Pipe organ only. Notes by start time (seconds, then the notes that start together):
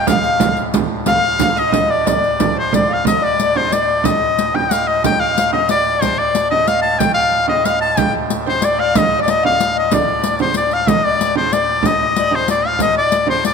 Already playing: D2 A2
3.06 D2 A2
7.01 D2 A2
10.88 D2 A2